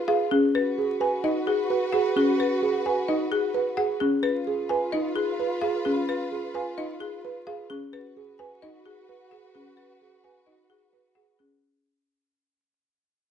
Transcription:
0.00 0.27 F4 medium
0.00 0.28 F4 medium
0.00 0.15 B4 medium
0.00 0.28 B4 medium
0.08 0.38 G#4 medium
0.08 0.38 F5 loud
0.31 0.62 C#4 medium
0.31 0.62 G#4 medium
0.54 3.97 F#4 medium
0.54 3.97 B4 medium
0.54 0.85 B4 loud
0.78 1.08 G#4 medium
1.01 1.31 B4 medium
1.01 1.31 G#5 medium
1.24 1.54 D#4 medium
1.24 1.54 D#5 medium
1.47 1.77 G#4 medium
1.70 2.00 B4 loud
1.93 2.23 G#4 medium
1.93 2.23 F#5 loud
2.16 2.46 C#4 medium
2.16 2.46 G#4 medium
2.40 2.70 B4 loud
2.62 2.92 G#4 medium
2.86 3.16 B4 loud
2.86 3.16 G#5 medium
3.08 3.39 D#4 medium
3.08 3.39 D#5 loud
3.32 3.62 G#4 medium
3.54 3.85 B4 loud
3.77 4.08 G#4 medium
3.77 4.08 F#5 loud
4.00 4.31 C#4 medium
4.00 4.31 G#4 medium
4.23 7.66 F4 medium
4.23 7.66 F4 loud
4.23 4.54 B4 loud
4.23 7.66 B4 medium
4.47 4.77 G#4 medium
4.69 5.00 B4 loud
4.69 5.00 G#5 medium
4.92 5.23 D#4 medium
4.92 5.23 D#5 loud
5.16 5.46 G#4 loud
5.40 5.69 B4 loud
5.61 5.92 G#4 medium
5.61 5.92 F5 loud
5.85 6.16 C#4 loud
5.85 6.15 G#4 medium
6.09 6.39 B4 loud
6.32 6.62 G#4 medium
6.54 6.85 B4 loud
6.54 6.85 G#5 medium
6.78 7.08 D#4 medium
6.78 7.08 D#5 loud
7.00 7.31 G#4 medium
7.25 7.54 B4 loud
7.47 7.77 G#4 loud
7.47 7.77 F5 loud
7.70 8.00 C#4 medium
7.70 8.00 G#4 medium
7.93 11.36 F#4 medium
7.93 8.23 B4 loud
7.93 11.36 B4 medium
8.17 8.46 G#4 medium
8.39 8.69 B4 loud
8.39 8.69 G#5 medium
8.62 8.93 D#4 medium
8.62 8.92 D#5 loud
8.86 9.16 G#4 medium
9.09 9.39 B4 loud
9.31 9.62 G#4 medium
9.31 9.61 F#5 loud
9.55 9.85 C#4 medium
9.55 9.85 G#4 medium
9.77 10.07 B4 medium
10.02 10.31 G#4 medium
10.24 10.54 B4 medium
10.24 10.54 G#5 medium
10.47 10.77 D#4 medium
10.47 10.77 D#5 medium
10.70 11.00 G#4 medium
10.93 11.23 B4 medium
11.15 11.46 G#4 medium
11.15 11.46 F#5 medium
11.39 11.70 C#4 medium
11.39 11.69 G#4 medium

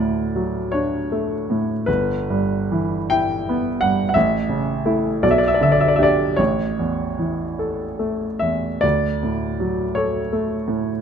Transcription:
0.00 1.82 D2 soft
0.00 0.59 A2 soft
0.00 0.73 D5 medium
0.36 0.96 F#3 soft
0.72 1.34 D4 soft
0.72 1.87 C#5 medium
1.12 1.72 A3 soft
1.50 1.88 A2 soft
1.86 4.12 G1 soft
1.86 3.09 B4 medium
2.30 2.95 G2 soft
2.72 3.33 E3 soft
3.10 3.68 E4 soft
3.10 3.81 G5 medium
3.49 4.03 B3 soft
3.81 4.16 G2 soft
3.81 4.07 F#5 medium
4.09 4.15 F#5 medium
4.14 5.20 A1 soft
4.14 5.22 E5 medium
4.49 5.07 C#3 soft
4.85 5.19 A3 soft
4.85 5.19 E4 soft
5.23 6.35 B1 soft
5.23 5.31 D5 medium
5.31 5.39 E5 medium
5.38 5.47 D5 medium
5.48 5.56 E5 medium
5.54 5.63 D5 medium
5.61 6.23 D3 soft
5.61 5.72 E5 medium
5.72 5.80 D5 medium
5.80 5.89 E5 medium
5.88 5.97 D5 medium
5.96 6.34 D4 soft
5.96 6.34 G4 soft
5.96 6.05 E5 medium
6.03 6.37 D5 medium
6.36 8.79 A1 soft
6.36 8.41 C#5 medium
6.79 7.43 E2 soft
7.19 7.84 E3 soft
7.59 8.25 A4 soft
7.99 8.67 A3 soft
8.39 8.83 E2 soft
8.39 8.82 E5 medium
8.81 11.00 D2 soft
8.81 9.97 D5 medium
9.23 9.83 A2 soft
9.60 10.19 F#3 soft
9.95 10.54 A4 soft
9.95 11.01 C#5 medium
10.33 10.89 A3 soft
10.68 11.01 A2 soft

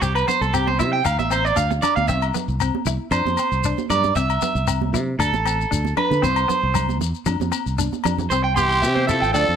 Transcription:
0.01 0.23 C2 medium
0.01 0.21 C4 medium
0.01 0.15 G4 medium
0.01 shekere medium
0.15 0.27 B4 medium
0.15 low agogo medium
0.15 shekere soft
0.28 0.47 B3 medium
0.28 0.42 C5 loud
0.28 low conga medium
0.28 shekere medium
0.41 0.81 C2 medium
0.41 0.53 A4 medium
0.41 shekere soft
0.54 0.73 C4 medium
0.54 0.67 G4 medium
0.54 low agogo medium
0.54 shekere medium
0.67 0.79 C5 medium
0.67 high conga medium
0.79 1.01 C3 medium
0.79 0.99 E4 medium
0.79 0.92 E5 loud
0.79 low conga medium
0.79 shekere medium
0.93 1.05 G5 loud
1.05 1.17 D2 loud
1.05 1.19 F5 medium
1.05 muted clean electric guitar stroke medium
1.05 low agogo medium
1.05 shekere medium
1.19 1.50 A1 medium
1.19 1.31 E5 medium
1.19 high conga medium
1.19 shekere soft
1.30 1.50 C4 medium
1.30 1.45 C5 medium
1.30 low agogo medium
1.30 shekere medium
1.45 1.57 D5 medium
1.45 shekere soft
1.56 1.78 D2 medium
1.56 1.76 D4 medium
1.56 1.70 F5 loud
1.56 shekere loud
1.71 muted clean electric guitar stroke medium
1.71 high conga medium
1.71 shekere soft
1.82 2.03 D4 medium
1.82 1.96 D5 medium
1.82 low conga medium
1.82 low agogo medium
1.82 shekere medium
1.96 2.11 D2 medium
1.96 2.08 F5 loud
1.96 high conga medium
1.96 shekere soft
2.08 2.30 C2 medium
2.08 2.29 C4 medium
2.08 2.24 E5 loud
2.08 shekere medium
2.22 low agogo medium
2.22 shekere soft
2.34 2.54 B3 medium
2.34 low conga medium
2.34 shekere medium
2.48 2.69 C2 medium
2.48 shekere soft
2.60 2.81 C4 medium
2.60 low agogo medium
2.60 shekere medium
2.75 high conga medium
2.85 2.97 C2 medium
2.85 3.06 E4 medium
2.85 low conga medium
2.85 shekere medium
3.11 3.23 F2 loud
3.11 3.32 D4 medium
3.11 3.86 C5 medium
3.11 low agogo medium
3.11 shekere medium
3.25 3.36 F2 medium
3.25 high conga medium
3.25 shekere soft
3.37 3.58 C4 medium
3.37 low agogo medium
3.37 shekere medium
3.52 3.73 C2 medium
3.52 shekere soft
3.64 3.84 D4 medium
3.64 shekere loud
3.78 high conga medium
3.78 shekere soft
3.90 4.11 G2 medium
3.90 4.15 D5 loud
3.90 muted clean electric guitar stroke medium
3.90 low conga medium
3.90 low agogo medium
3.90 shekere medium
4.04 high conga medium
4.04 shekere soft
4.15 4.37 C2 medium
4.15 4.36 C4 loud
4.15 4.89 E5 loud
4.15 shekere medium
4.29 low agogo medium
4.29 shekere soft
4.42 4.62 B3 medium
4.42 low conga medium
4.42 shekere medium
4.55 4.94 C2 medium
4.55 shekere soft
4.68 4.87 C4 medium
4.68 low agogo medium
4.68 shekere loud
4.82 high conga medium
4.93 5.14 C3 medium
4.93 5.13 E4 medium
4.93 low conga medium
4.93 shekere medium
5.19 5.30 D2 loud
5.19 5.39 D4 medium
5.19 5.93 A4 medium
5.19 low agogo medium
5.19 shekere medium
5.33 5.64 A1 medium
5.33 high conga medium
5.33 shekere soft
5.46 5.65 C4 medium
5.46 low agogo medium
5.46 shekere medium
5.61 shekere soft
5.71 5.93 D2 medium
5.71 5.91 D4 medium
5.71 shekere loud
5.85 high conga medium
5.85 shekere soft
5.97 6.17 D4 medium
5.97 6.22 B4 medium
5.97 low conga medium
5.97 low agogo medium
6.11 6.25 D3 medium
6.11 high conga medium
6.11 shekere soft
6.22 6.44 C2 loud
6.22 6.42 C4 medium
6.22 6.97 C5 loud
6.22 shekere medium
6.36 low agogo medium
6.36 shekere soft
6.48 6.68 B3 medium
6.48 low conga medium
6.48 shekere medium
6.63 7.00 C2 medium
6.74 muted clean electric guitar stroke medium
6.74 low conga medium
6.74 low agogo medium
6.74 shekere medium
6.89 high conga medium
6.89 shekere soft
7.00 7.12 E2 medium
7.00 low conga medium
7.00 shekere medium
7.15 shekere soft
7.26 7.37 F2 loud
7.26 7.46 D4 medium
7.26 high conga medium
7.26 low agogo medium
7.26 shekere medium
7.40 7.50 F2 medium
7.40 high conga medium
7.40 shekere soft
7.52 7.72 C4 medium
7.52 low agogo medium
7.52 shekere medium
7.66 7.87 C2 medium
7.66 shekere soft
7.78 7.98 D4 medium
7.78 high conga medium
7.78 shekere loud
7.93 high conga medium
7.93 shekere soft
8.04 8.26 F2 medium
8.04 8.25 D4 medium
8.04 low conga medium
8.04 low agogo medium
8.04 shekere medium
8.18 low conga medium
8.18 shekere soft
8.30 8.84 C2 medium
8.30 8.51 C4 medium
8.30 8.41 C5 medium
8.30 low conga medium
8.30 shekere medium
8.44 8.53 G5 medium
8.56 9.06 E3 medium
8.56 8.77 B3 medium
8.56 9.05 G4 loud
8.56 8.67 C6 medium
8.56 high conga medium
8.56 shekere medium
8.69 8.79 C6 medium
8.69 shekere soft
8.82 9.23 C3 medium
8.82 9.03 C4 medium
8.82 8.93 E5 medium
8.82 shekere medium
8.95 9.05 C5 medium
8.95 high conga medium
9.07 9.33 F3 medium
9.07 9.29 E4 medium
9.07 9.32 A4 medium
9.07 9.18 E5 medium
9.07 low conga medium
9.07 shekere medium
9.21 9.32 A1 medium
9.21 9.31 G5 medium
9.21 shekere soft
9.33 9.46 D2 loud
9.33 9.56 F3 medium
9.33 9.55 D4 medium
9.33 9.56 A4 loud
9.33 9.45 D5 medium
9.33 low conga medium
9.33 shekere medium
9.49 9.56 F2 medium

